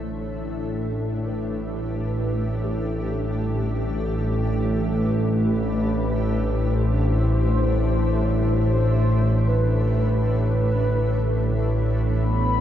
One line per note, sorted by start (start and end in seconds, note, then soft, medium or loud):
0.00 12.61 A1 medium
0.00 12.61 A2 medium
0.00 12.61 A3 medium
0.00 12.61 D4 medium
0.00 12.61 G4 medium
0.00 0.36 A4 loud
0.00 12.61 E5 medium
0.36 1.27 A4 medium
1.25 2.64 B4 loud
2.63 3.11 G4 medium
3.10 4.46 A4 medium
4.91 6.75 B4 loud
6.74 8.55 C5 loud
8.55 9.49 C5 loud
9.47 10.37 B4 medium
10.38 11.70 B4 medium
12.17 12.61 B3 medium
12.17 12.61 B5 medium